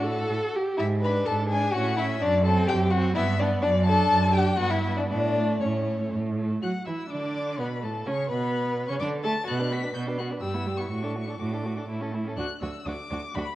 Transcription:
Already playing: cello A2, violin F#4 F#5
0.04 viola A4
0.30 cello A2
0.55 viola G4
0.77 cello G#2, violin E4 E5
1.01 viola D4, violin B4 B5
1.25 cello G#2, violin A4 A5
1.49 viola D4, violin G#4 G#5
1.72 cello A2, viola C#4, violin F#4 F#5
1.97 viola C#4, violin E4 E5
2.20 cello F#2, violin D4 D5
2.45 viola C4, violin A4 A5
2.67 cello F#2, violin G4 G5
2.90 viola C4, violin F#4 F#5
3.15 cello G2, viola B3, violin E4 E5
3.40 viola B3, violin D4 D5
3.62 cello F#2, violin D4 D5
3.85 viola D4, violin A4 A5
4.11 cello F#2
4.33 viola D4, violin G4 G5
4.58 cello G2, viola B3, violin F#4 F#5
4.70 violin E4 E5
4.84 viola B3
4.97 violin D4 D5
5.08 cello A2, violin D4 D5
5.34 viola A3
5.61 cello A2, violin C#4 C#5
5.86 viola A3
6.12 cello A2
6.37 viola A3
6.62 cello F#3, viola F#4, violin F#5 F#6
6.86 cello E3, viola E4, violin E5 E6
7.09 cello D3, viola D4, violin D5 D6
7.58 cello B2, viola B3, violin B4 B5
7.82 cello A2, viola A3, violin A4 A5
8.06 cello C#3, viola C#4, violin C#5 C#6
8.30 cello B2, viola B3, violin B4 B5
8.88 cello C#3, viola C#4, violin C#5 C#6
8.99 cello D3, viola D4, violin D5 D6
9.24 cello A3, viola A4, violin A5 A6
9.46 cello B2, viola B3, violin F#4 F#6
9.59 viola D4, violin B4
9.71 viola B3, violin F#4 B6
9.83 viola D4, violin B4
9.94 cello B2, viola B3, violin F#4 G6
10.06 viola D4, violin B4
10.18 viola B3, violin F#4 F#6
10.30 viola D4, violin B4
10.41 cello G2, viola G3, violin G4 E6
10.54 viola B3, violin E4
10.67 viola G3, violin G4
10.77 viola B3, violin E4 C#6
10.89 cello A2, viola A3, violin F#4 C#6
11.03 viola D4, violin A4
11.15 viola A3, violin F#4
11.26 viola D4, violin A4
11.39 cello A2, viola A3, violin F#4 D6
11.51 viola D4, violin A4
11.63 viola A3, violin F#4
11.76 viola D4, violin A4
11.88 cello A2, viola A3, violin E4
12.00 viola C#4, violin A4
12.12 viola A3, violin E4
12.24 viola C#4, violin A4
12.36 cello D2, viola D4, violin F#4 F#6
12.61 cello D2, viola D4, violin F#4 E6
12.86 cello D2, viola D4, violin F#4 D6
13.10 cello D2, viola D4, violin F#4
13.34 cello D2, viola D4, violin F#4 B5

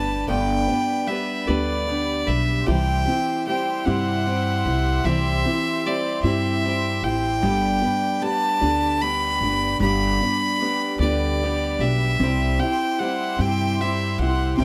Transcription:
Already playing: upright bass G1, steel-string acoustic guitar G3 B3 D4 B4, upright piano B3 D4 G4, string section G4 D5 B5, fiddle A5
0.28 upright bass G1, steel-string acoustic guitar G2 D3 G3 B3 D4 B4, upright piano B3, fiddle G5
0.68 steel-string acoustic guitar G3 B3 D4 B4, upright piano B3
1.07 steel-string acoustic guitar G3 B3 D4 B4, upright piano G4, fiddle E5
1.47 upright bass D2, steel-string acoustic guitar G2 D3 G3 B3 D4 B4, upright piano B3 D4 G4, fiddle D5
1.87 steel-string acoustic guitar G3 B3 D4 B4
2.27 upright bass B1, steel-string acoustic guitar G3 B3 D4 B4, fiddle E5
2.66 upright bass C2, steel-string acoustic guitar C3 G3 C4 E4 G4, upright piano E3, string section E5 C6, fiddle G5
3.05 upright piano C4, steel-string acoustic guitar C4 E4 G4
3.46 steel-string acoustic guitar G3 C4 E4 G4, upright piano G4, fiddle G5
3.85 upright bass G2, steel-string acoustic guitar C3 G3 C4 E4 G4, upright piano C4 E4 G4, fiddle F#5
4.26 steel-string acoustic guitar G3 C4 E4 G4
4.65 upright bass C2, steel-string acoustic guitar C4 E4 G4
5.04 upright bass C2, steel-string acoustic guitar C3 G3 C4 E4 G4, upright piano E3, fiddle E5
5.45 upright piano C4, steel-string acoustic guitar C4 E4 G4
5.85 steel-string acoustic guitar G3 C4 E4 G4, upright piano G4, fiddle D5
6.23 upright bass G2, steel-string acoustic guitar C3 G3 C4 E4 G4, upright piano C4 E4 G4, fiddle E5
6.64 steel-string acoustic guitar G3 C4 E4 G4
7.02 upright bass A1, steel-string acoustic guitar E4 G4, fiddle G5
7.06 steel-string acoustic guitar C4
7.41 upright bass G1, steel-string acoustic guitar G2 D3 G3 B3 D4 G4, upright piano G3, string section D5 B5
7.81 steel-string acoustic guitar G3 B3 D4 G4, upright piano B3
8.21 steel-string acoustic guitar G3 B3 D4 G4, upright piano G4, fiddle A5
8.61 upright bass D2, steel-string acoustic guitar G2 D3 G3 B3 D4 G4, upright piano B3 D4 G4
9.01 steel-string acoustic guitar G3 B3 D4 G4, fiddle B5
9.40 upright bass G1, steel-string acoustic guitar D4 G4
9.45 steel-string acoustic guitar G3 B3
9.80 upright bass G1, steel-string acoustic guitar G2 D3 G3 B3 D4, upright piano G3, fiddle B5
9.84 steel-string acoustic guitar G4
10.20 upright piano B3, steel-string acoustic guitar B3 D4 G4
10.24 steel-string acoustic guitar G3
10.60 steel-string acoustic guitar G3 B3 D4 G4, upright piano G4
10.99 upright bass D2, upright piano B3 D4 G4, steel-string acoustic guitar B3 D4 G4, fiddle D5
11.03 steel-string acoustic guitar G2 D3 G3
11.42 steel-string acoustic guitar G3 B3 D4 G4
11.79 upright bass B1, steel-string acoustic guitar B3 D4 G4, fiddle E5
11.83 steel-string acoustic guitar G3
12.19 upright bass C2, steel-string acoustic guitar C3 G3 C4 E4, upright piano C4, string section G4 E5 C6
12.23 steel-string acoustic guitar G4
12.58 upright piano C4, steel-string acoustic guitar G4, fiddle G5
12.62 steel-string acoustic guitar C4 E4
12.98 steel-string acoustic guitar G3 C4 E4 G4, upright piano G4, fiddle F#5
13.38 upright bass G2, steel-string acoustic guitar C3 G3 C4 E4 G4, upright piano C4 E4 G4, fiddle G5
13.80 steel-string acoustic guitar G3 C4 E4 G4, fiddle E5
14.18 upright bass C2, steel-string acoustic guitar E4 G4, fiddle F#5
14.23 steel-string acoustic guitar C4
14.57 upright bass C2, steel-string acoustic guitar C3 G3 C4 E4 G4, upright piano C4, fiddle G5

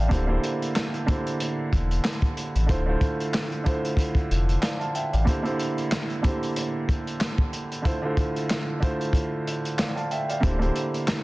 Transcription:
Already playing: upright piano D3 A3 E4 F4 C5 D5 E5 F5 G5 A5
0.08 sub bass D1, upright piano D3 A#3 E4 G4 C5, kick, closed hi-hat
0.26 upright piano D3 A#3 E4 G4 C5
0.44 closed hi-hat
0.62 closed hi-hat
0.76 snare, clap, closed hi-hat
0.94 closed hi-hat
1.06 upright piano D3 A#3 E4 G4 C5, kick, closed hi-hat
1.27 closed hi-hat
1.40 closed hi-hat
1.73 sub bass E1, kick, closed hi-hat
1.91 closed hi-hat
2.04 snare, clap, closed hi-hat
2.22 kick, closed hi-hat
2.37 closed hi-hat
2.55 sub bass A1, closed hi-hat
2.66 sub bass D1, upright piano D3 A3 E4 F4 C5, kick, closed hi-hat
2.86 upright piano D3 A3 E4 F4 C5
3.01 kick, closed hi-hat
3.20 closed hi-hat
3.34 snare, clap, closed hi-hat
3.52 closed hi-hat
3.64 upright piano D3 A3 E4 F4 C5, kick, closed hi-hat
3.85 closed hi-hat
3.97 kick, closed hi-hat
4.15 kick, closed hi-hat
4.31 sub bass F1, closed hi-hat
4.49 closed hi-hat
4.63 upright piano D5 F5, snare, clap, closed hi-hat
4.79 upright piano F5 A5, closed hi-hat
4.95 upright piano E5 G5, closed hi-hat
5.13 sub bass A1, upright piano D5 F5, closed hi-hat
5.24 upright piano D3 A#3 E4 G4 C5, kick, closed hi-hat
5.42 upright piano D3 A#3 E4 G4 C5, closed hi-hat
5.59 closed hi-hat
5.78 closed hi-hat
5.92 snare, clap, closed hi-hat
6.10 closed hi-hat
6.22 upright piano D3 A#3 E4 G4 C5, kick, closed hi-hat
6.43 closed hi-hat
6.56 closed hi-hat
6.89 kick, closed hi-hat
7.07 closed hi-hat
7.21 snare, clap, closed hi-hat
7.38 kick
7.53 closed hi-hat
7.72 closed hi-hat
7.82 upright piano D3 A3 E4 F4 C5, kick, closed hi-hat
8.02 upright piano D3 A3 E4 F4 C5
8.17 kick, closed hi-hat
8.36 closed hi-hat
8.50 snare, clap, closed hi-hat
8.80 upright piano D3 A3 E4 F4 C5, kick, closed hi-hat
9.01 closed hi-hat
9.13 kick, closed hi-hat
9.47 closed hi-hat
9.65 closed hi-hat
9.79 upright piano D5 F5, snare, clap, closed hi-hat
9.96 upright piano F5 A5, closed hi-hat
10.11 upright piano E5 G5, closed hi-hat
10.29 upright piano D5 F5, closed hi-hat
10.40 sub bass D1, upright piano D3 A#3 E4 G4 C5, kick, closed hi-hat
10.58 upright piano D3 A#3 E4 G4 C5, closed hi-hat
10.76 closed hi-hat
10.94 closed hi-hat
11.08 snare, clap, closed hi-hat

